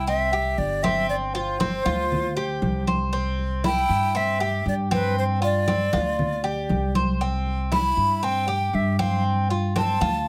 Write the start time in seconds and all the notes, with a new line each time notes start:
Already playing: C2
0.07 C4 E5, high conga
0.33 G4, high conga
0.58 G1 D5, high conga
0.83 C4 E5, high conga
1.09 D5, high conga
1.34 F4 C5, high conga
1.60 C4, high conga
1.85 D2 F4, high conga
2.12 high conga, low conga
2.37 G4, high conga
2.62 C2, high conga
2.87 C5, high conga
3.13 C4, high conga
3.39 high conga
3.64 E4 G5, high conga
3.89 G2, high conga
4.15 C4 E5, high conga
4.40 G4, high conga
4.66 G2 D5, high conga
4.91 C4 B4, high conga
5.17 C5, high conga
5.42 F4 D5, high conga
5.68 C4, high conga
5.93 D2 F4, high conga
6.19 high conga, low conga
6.44 G4, high conga
6.69 C2, high conga
6.95 C5, high conga
7.21 C4, high conga
7.46 high conga
7.72 E4 B5, high conga
7.97 G2, high conga
8.23 C4 G5, high conga
8.48 G4, high conga
8.73 G2 E5, high conga
8.99 C4 F5, high conga
9.25 high conga
9.50 F4, high conga
9.76 C4 A5, high conga
10.01 D2 F4, high conga